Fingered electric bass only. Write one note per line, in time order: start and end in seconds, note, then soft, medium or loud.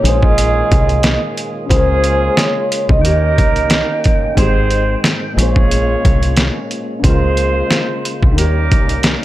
0.04 0.62 A#1 loud
0.72 1.16 C2 loud
1.70 2.28 C#2 loud
2.89 3.04 C2 medium
3.04 3.38 D#2 loud
3.38 3.82 C2 loud
4.37 4.95 G#1 loud
5.37 5.95 A#1 loud
6.05 6.49 C2 loud
7.04 7.62 C#2 loud
8.23 8.37 C2 medium
8.37 8.72 D#2 loud
8.72 9.16 C2 medium